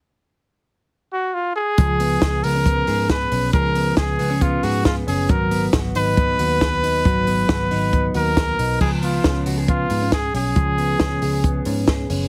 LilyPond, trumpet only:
\new Staff \with { instrumentName = "Trumpet" } { \time 4/4 \key des \mixolydian \tempo 4 = 137 r2 r8 ges'8 f'8 aes'8~ | aes'4. bes'4. ces''4 | bes'4 aes'4 f'8 ges'8 f'8 aes'8 | bes'4 r8 ces''2~ ces''8~ |
ces''2~ ces''8 bes'4. | aes'8 f'4 r8 f'4 aes'8 aes'8~ | aes'2~ aes'8 r4. | }